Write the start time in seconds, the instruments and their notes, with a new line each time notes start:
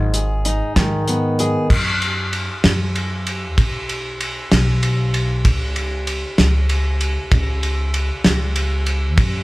Already playing: upright bass G#1, steel-string acoustic guitar G#2
0.14 steel-string acoustic guitar G#4, closed hi-hat
0.45 steel-string acoustic guitar D#4, closed hi-hat
0.76 upright bass G#2, steel-string acoustic guitar D#3, kick, snare, closed hi-hat
1.08 steel-string acoustic guitar B3, closed hi-hat
1.39 steel-string acoustic guitar G#4, closed hi-hat
1.70 upright bass F#2, kick, crash
2.02 ride
2.33 ride
2.64 upright bass F#2, snare, ride
2.95 ride
3.27 ride
3.58 upright bass B1, kick, ride
3.89 ride
4.21 ride
4.52 upright bass B1, snare, ride
4.83 ride
5.14 ride
5.45 upright bass C#2, kick, ride
5.76 ride
6.07 ride
6.38 upright bass C#2, snare, ride
6.69 ride
7.01 ride
7.32 upright bass C#2, kick, ride
7.63 ride
7.94 ride
8.24 upright bass C#2, snare, ride
8.56 ride
8.86 ride
9.18 upright bass F#2, kick, ride